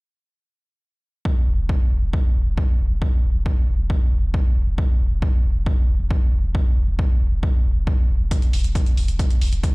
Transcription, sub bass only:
1.47 1.58 E1 loud
1.58 1.69 E1 medium
1.91 2.02 E1 medium
2.02 2.13 E1 medium
2.35 2.46 E1 medium
2.47 2.57 E1 medium
2.80 2.90 E1 loud
2.91 3.01 E1 medium
3.24 3.34 E1 medium
3.35 3.46 E1 medium
3.68 3.78 E1 medium
3.79 3.90 E1 medium
4.12 4.22 E1 medium
4.23 4.34 E1 medium
4.56 4.67 E1 loud
4.67 4.78 E1 medium
5.00 5.11 E1 loud
5.11 5.22 E1 medium
5.44 5.55 E1 medium
5.56 5.66 E1 medium
5.89 5.99 E1 loud
6.00 6.10 E1 medium
6.33 6.43 E1 loud
6.44 6.55 E1 medium
6.77 6.87 E1 medium
6.88 6.99 E1 medium
7.21 7.31 E1 loud
7.32 7.43 E1 medium
7.65 7.76 E1 loud
7.76 7.87 E1 medium
8.09 8.20 E1 loud
8.20 8.31 E1 medium
8.53 8.64 E1 loud
8.64 8.75 E1 medium
8.97 9.08 E1 medium
9.08 9.19 E1 medium
9.42 9.52 E1 loud
9.53 9.63 E1 medium

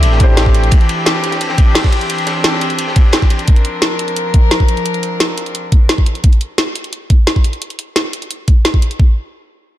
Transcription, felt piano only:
0.00 0.17 A3 loud
0.00 0.19 D4 medium
0.00 0.20 E4 medium
0.00 0.22 G4 medium
0.00 0.74 E5 loud
0.17 0.68 A3 medium
0.17 0.69 D4 medium
0.17 0.70 E4 medium
0.22 0.71 G4 medium
0.22 0.71 C5 loud

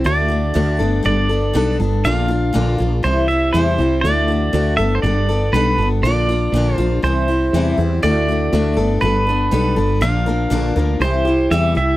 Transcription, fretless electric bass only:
0.05 0.51 D2 medium
0.55 0.78 D2 medium
0.80 1.03 G1 medium
1.05 1.51 G1 medium
1.55 1.78 B1 medium
1.80 2.03 G1 medium
2.05 2.51 A#1 medium
2.55 2.78 A#1 medium
2.80 3.03 A#1 medium
3.04 3.50 C2 medium
3.54 3.77 E2 medium
3.79 4.02 C2 medium
4.04 4.50 D2 medium
4.53 4.76 D2 medium
4.78 5.01 G1 medium
5.03 5.49 G1 medium
5.52 5.76 B1 medium
5.78 6.01 G1 medium
6.03 6.49 A#1 medium
6.52 6.75 A#1 medium
6.78 7.01 A#1 medium
7.03 7.49 C2 medium
7.53 7.76 E2 medium
7.78 8.01 E2 medium
8.03 8.49 D2 medium
8.53 8.75 D2 medium
8.77 9.00 G1 medium
9.02 9.48 G1 medium
9.52 9.75 B1 medium
9.77 10.00 G1 medium
10.01 10.48 A#1 medium
10.51 10.74 A#1 medium
10.76 10.99 D2 medium
11.00 11.47 C2 medium
11.51 11.74 E2 medium
11.76 11.97 C2 medium

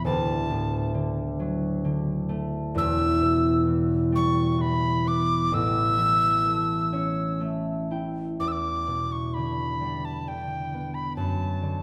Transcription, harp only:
0.00 2.69 B3 medium
0.04 2.82 D1 medium
0.04 2.82 D2 medium
0.50 1.01 A2 medium
0.94 1.83 D3 medium
1.40 1.92 F#3 medium
1.85 2.82 D3 medium
2.29 5.62 A3 medium
2.74 5.56 E1 medium
2.74 5.56 E2 medium
3.21 5.56 B2 medium
3.67 4.57 E3 medium
4.12 5.56 G3 medium
4.58 5.56 E3 medium
5.05 8.16 B3 medium
5.52 8.45 A1 medium
5.52 8.45 A2 medium
5.97 8.45 E3 medium
6.45 7.40 A3 medium
6.92 9.42 C#4 soft
6.92 8.84 C#5 medium
7.40 10.73 A3 soft
7.40 9.13 E5 medium
7.91 10.52 E4 soft
7.91 9.47 G5 medium
8.40 11.23 E2 soft
8.87 9.41 B2 soft
9.36 10.27 D3 soft
9.81 10.33 G3 soft
10.28 11.23 D3 soft
10.74 11.83 B3 soft
11.17 11.83 F#2 medium
11.62 11.83 D3 soft

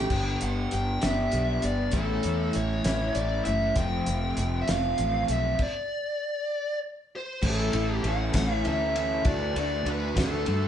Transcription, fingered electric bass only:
0.10 0.35 G1 medium
0.42 0.66 G1 medium
0.73 0.97 G1 medium
1.03 1.27 G1 medium
1.33 1.58 B1 medium
1.63 1.88 G1 medium
1.93 2.18 A1 medium
2.25 2.49 E2 medium
2.56 2.80 A1 medium
2.85 3.10 A1 loud
3.15 3.40 A1 medium
3.47 3.71 F#1 medium
3.76 4.01 F1 loud
4.07 4.32 F1 medium
4.37 4.62 F1 loud
4.68 4.93 F1 medium
4.99 5.24 A1 medium
5.29 5.54 B1 medium
7.43 7.72 A1 medium
7.73 8.03 A1 medium
8.04 8.33 A1 medium
8.34 8.63 A1 loud
8.67 9.24 D2 medium
9.25 9.55 D2 loud
9.56 9.85 D2 medium
9.86 10.15 D2 medium
10.17 10.46 D2 loud
10.48 10.68 G2 medium

